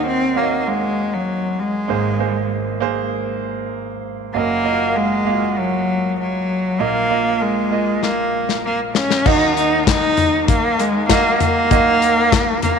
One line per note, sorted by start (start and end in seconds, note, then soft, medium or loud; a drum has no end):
0.00 1.85 D#2 soft
0.00 1.85 D#3 soft
0.00 0.35 A#3 medium
0.00 0.36 F#4 medium
0.00 0.43 D#5 medium
0.07 0.39 C4 loud
0.35 1.41 A#3 medium
0.35 0.69 A#3 medium
0.35 1.42 F#4 medium
0.35 0.43 C#5 medium
0.43 1.45 D#5 medium
0.68 1.15 G#3 medium
1.14 1.61 F#3 medium
1.60 2.82 G#3 medium
1.88 4.31 G#1 medium
1.88 4.31 G#2 soft
1.88 2.15 A#3 medium
1.88 2.16 G#4 medium
1.88 2.16 C5 medium
2.19 2.72 A#3 medium
2.19 2.73 G#4 medium
2.19 2.73 C5 medium
2.80 3.87 A#3 medium
2.80 3.87 G#4 medium
2.80 3.87 C5 medium
4.34 6.76 F#1 medium
4.34 6.76 F#2 soft
4.34 4.61 A#3 medium
4.34 4.98 A#3 medium
4.34 4.61 F#4 medium
4.34 4.61 D#5 medium
4.64 5.18 A#3 medium
4.64 4.72 F4 soft
4.64 5.18 D#5 medium
4.71 5.21 F#4 medium
4.96 5.60 G#3 medium
5.25 6.32 A#3 medium
5.25 5.33 F4 soft
5.25 6.33 F5 medium
5.32 6.36 F#4 medium
5.59 6.19 F#3 medium
6.20 6.83 F#3 medium
6.79 9.22 A#1 medium
6.79 9.21 A#2 medium
6.79 7.06 A#3 medium
6.79 7.44 A#3 medium
6.79 7.06 F4 medium
6.79 7.07 D#5 medium
7.10 7.63 A#3 medium
7.10 7.63 F4 medium
7.10 7.64 D#5 medium
7.42 8.05 G#3 medium
7.71 8.78 A#3 medium
7.71 8.78 F4 medium
7.71 8.78 D#5 medium
8.03 8.65 A#3 medium
8.03 snare soft
8.49 snare medium
8.65 8.79 A#3 medium
8.95 9.28 C#4 medium
8.95 snare medium
9.11 snare medium
9.25 11.67 D#2 medium
9.25 11.67 D#3 medium
9.25 10.31 A#3 medium
9.25 9.56 D#4 loud
9.25 10.32 F#4 medium
9.25 10.32 D#5 medium
9.25 kick loud
9.25 crash medium
9.57 9.85 D#4 medium
9.57 closed hi-hat medium
9.87 10.44 D#4 loud
9.87 kick loud
9.87 snare loud
9.87 clap loud
9.87 closed hi-hat medium
10.17 closed hi-hat medium
10.17 floor tom medium
10.48 10.81 A#3 medium
10.48 kick loud
10.48 closed hi-hat medium
10.79 11.09 G#3 medium
10.79 closed hi-hat medium
11.09 11.62 A#3 medium
11.09 11.38 A#3 loud
11.09 11.63 F#4 medium
11.09 11.63 D#5 medium
11.09 kick medium
11.09 snare loud
11.09 clap medium
11.09 closed hi-hat medium
11.40 12.59 A#3 loud
11.40 closed hi-hat medium
11.40 floor tom medium
11.71 12.79 D#2 medium
11.71 12.79 D#3 medium
11.71 12.77 A#3 medium
11.71 12.77 F#4 medium
11.71 12.77 D#5 medium
11.71 kick loud
11.71 closed hi-hat medium
12.02 closed hi-hat medium
12.32 kick loud
12.32 snare loud
12.32 clap medium
12.32 closed hi-hat medium
12.62 12.79 A#3 medium
12.62 closed hi-hat medium
12.62 floor tom medium